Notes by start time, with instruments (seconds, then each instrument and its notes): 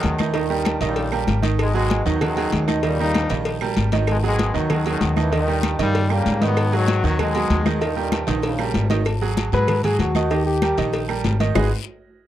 Already playing: trombone section F#2 B2 D#3, grand piano F#3 F#4 G#4
0.03 upright bass D#2, cowbell, high conga, low agogo, short guiro
0.18 grand piano D#3 D#4 D#5, trombone section E3, high conga, low agogo, short guiro, claves
0.34 trombone section G2 A#2 D#3, grand piano D#3 D#4 D#5, cowbell, high conga, low agogo, long guiro
0.50 grand piano G3 G4 A#4, high conga
0.65 cowbell, high conga, low agogo, short guiro, claves
0.81 upright bass A#1, trombone section A#2 C#3 G3, grand piano D#3 D#4 D#5, cowbell, high conga, short guiro
0.96 cowbell, high conga, low agogo, long guiro
1.12 grand piano G3 G4 A#4, high conga, low agogo, claves
1.27 upright bass G#1, cowbell, high conga, short guiro
1.42 grand piano D#3 D#4 D#5, cowbell, high conga, short guiro
1.59 trombone section B2 D#3 G#3, cowbell, high conga, low agogo, long guiro, claves
1.74 trombone section B2 D#3 G#3, grand piano F#3 F#4 G#4, high conga, low agogo
1.90 cowbell, high conga, low agogo, short guiro
2.05 upright bass D#2, grand piano D#3 D#4 D#5, trombone section F#3, high conga, short guiro
2.21 trombone section F#2 B2 D#3, grand piano F#3 F#4 G#4, cowbell, high conga, low conga, low agogo, long guiro, claves
2.36 grand piano F#3 F#4 G#4, cowbell, high conga
2.52 upright bass D#2, cowbell, high conga, low timbale, low agogo, short guiro
2.68 grand piano D#3 D#4 D#5, high conga, low agogo, short guiro, claves
2.83 trombone section A#2 C#3 G3, grand piano D#3 D#4 D#5, cowbell, high conga, low agogo, long guiro
2.99 grand piano G3 G4 A#4, trombone section G3 A#3 D#4, high conga
3.14 cowbell, high conga, high timbale, low agogo, short guiro, claves
3.30 upright bass A#1, grand piano D#3 D#4 D#5, cowbell, high conga, short guiro
3.45 cowbell, high conga, low agogo, long guiro
3.61 grand piano G3 G4 A#4, high conga, low timbale, low agogo, claves
3.76 upright bass G#1, cowbell, high conga, short guiro
3.92 grand piano D#3 D#4 D#5, cowbell, high conga, low timbale, short guiro
4.07 trombone section B2 D#3 G#3, cowbell, high conga, low agogo, long guiro, claves
4.23 trombone section B2 D#3 G#3, grand piano F#3 F#4 G#4, high conga, low agogo
4.39 cowbell, high conga, low agogo, short guiro
4.54 upright bass D#2, grand piano D#3 D#4 D#5, trombone section F#3, high conga, short guiro
4.70 trombone section F#2 B2 D#3, grand piano F#3 F#4 G#4, cowbell, high conga, low conga, low agogo, long guiro, claves
4.86 trombone section F#2 B2 D#3, grand piano F#3 F#4 G#4, cowbell, high conga
5.01 upright bass D#2, cowbell, high conga, low agogo, short guiro
5.16 grand piano D#3 D#4 D#5, trombone section E3, high conga, low agogo, short guiro, claves
5.32 trombone section G2 A#2 D#3, grand piano D#3 D#4 D#5, cowbell, low agogo, long guiro
5.48 grand piano G3 G4 A#4, high conga
5.63 cowbell, high conga, low agogo, short guiro, claves
5.79 upright bass G2, trombone section A#2 C#3 G3, grand piano D#3 D#4 D#5, cowbell, high conga, short guiro
5.95 cowbell, high conga, low agogo, long guiro
6.10 trombone section C#3 G3 A#3, grand piano G3 G4 A#4, high conga, low agogo, claves
6.26 upright bass G#2, cowbell, high conga, short guiro
6.41 grand piano D#3 D#4 D#5, trombone section D#3 F#3 B3, cowbell, high conga, short guiro
6.57 cowbell, high conga, low agogo, long guiro, claves
6.72 trombone section B2 D#3 F#3, grand piano F#3 F#4 G#4, high conga, low agogo
6.88 cowbell, high conga, low agogo, short guiro
7.03 upright bass D#2, grand piano D#3 D#4 D#5, trombone section F#3, high conga, short guiro
7.19 trombone section B2 D#3 G#3, grand piano F#3 F#4 G#4, cowbell, high conga, low conga, low agogo, long guiro, claves
7.35 grand piano F#3 F#4 G#4, cowbell, high conga
7.50 upright bass D#2, cowbell, high conga, low timbale, low agogo, short guiro
7.66 grand piano D#3 D#4 D#5, high conga, low agogo, short guiro, claves
7.81 trombone section G2 A#2 D#3, grand piano D#3 D#4 D#5, cowbell, low agogo, long guiro
7.96 grand piano G3 G4 A#4, high conga
8.12 cowbell, high conga, high timbale, low agogo, short guiro, claves
8.27 upright bass A#1, grand piano D#3 D#4 D#5, cowbell, high conga, high timbale, short guiro
8.42 trombone section G2 A#2 C#3, cowbell, high conga, high timbale, low agogo, long guiro
8.59 grand piano G3 G4 A#4, high conga, low timbale, low agogo, claves
8.74 upright bass G#1, cowbell, high conga, low timbale, short guiro
8.90 grand piano D#3 D#4 D#5, cowbell, high conga, low timbale, short guiro
9.05 cowbell, high conga, low agogo, long guiro, claves
9.21 grand piano F#3 F#4 G#4, high conga, low agogo
9.37 cowbell, high conga, low agogo, short guiro
9.52 upright bass G#2, grand piano F#3 F#4 G#4, trombone B4, high conga, short guiro
9.68 cowbell, high conga, low conga, low agogo, long guiro, claves
9.84 grand piano F#3 F#4 G#4, trombone G#4, cowbell, high conga, low conga
9.99 upright bass D#2, trombone F#4, cowbell, high conga, low timbale, low agogo, short guiro
10.15 grand piano D#3 D#4 D#5, high conga, low agogo, short guiro, claves
10.30 grand piano D#3 D#4 D#5, trombone G4, cowbell, low agogo, long guiro
10.46 trombone G4, high conga
10.62 grand piano G3 G4 A#4, cowbell, high conga, low agogo, short guiro, claves
10.78 upright bass A#1, grand piano D#3 D#4 D#5, cowbell, high conga, short guiro
10.93 cowbell, high conga, low agogo, long guiro
11.08 grand piano G3 G4 A#4, high conga, low agogo, claves
11.24 upright bass G#1, cowbell, high conga, low timbale, short guiro
11.40 grand piano D#3 D#4 D#5, cowbell, high conga, short guiro
11.55 upright bass G#1, grand piano G#3 D#4 F#4 G#4 B4 D#5, trombone G#4, low bongo, low conga, low timbale, long guiro, claves